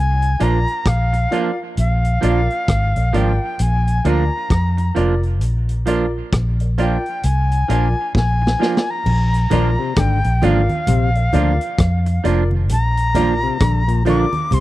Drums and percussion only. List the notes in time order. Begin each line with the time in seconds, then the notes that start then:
0.22 closed hi-hat
0.40 closed hi-hat
0.68 closed hi-hat
0.85 kick, cross-stick, closed hi-hat
1.13 closed hi-hat
1.32 closed hi-hat
1.77 closed hi-hat
2.04 closed hi-hat
2.22 closed hi-hat
2.50 closed hi-hat
2.68 kick, cross-stick, closed hi-hat
2.96 closed hi-hat
3.14 closed hi-hat
3.59 closed hi-hat
3.87 closed hi-hat
4.05 closed hi-hat
4.50 kick, cross-stick, closed hi-hat
4.78 closed hi-hat
4.96 closed hi-hat
5.23 closed hi-hat
5.41 closed hi-hat
5.69 closed hi-hat
5.86 closed hi-hat
6.32 kick, cross-stick, closed hi-hat
6.60 closed hi-hat
6.78 closed hi-hat
7.06 closed hi-hat
7.23 closed hi-hat
7.51 closed hi-hat
7.70 closed hi-hat
8.15 kick, snare
8.47 snare
8.62 snare
8.77 snare
9.06 crash, low conga
9.34 closed hi-hat
9.51 closed hi-hat, high conga, low conga
9.96 kick, cross-stick, closed hi-hat, high conga
10.24 closed hi-hat
10.42 closed hi-hat, high conga
10.69 closed hi-hat, high conga
10.87 closed hi-hat, low conga
11.15 closed hi-hat
11.33 closed hi-hat, high conga, low conga
11.61 closed hi-hat
11.78 kick, cross-stick, closed hi-hat
12.06 closed hi-hat
12.25 closed hi-hat
12.51 high conga
12.69 closed hi-hat, low conga
12.97 closed hi-hat
13.15 closed hi-hat, high conga, low conga
13.60 kick, cross-stick, closed hi-hat, high conga
13.88 closed hi-hat
14.06 closed hi-hat, high conga
14.33 closed hi-hat, high conga
14.51 closed hi-hat, low conga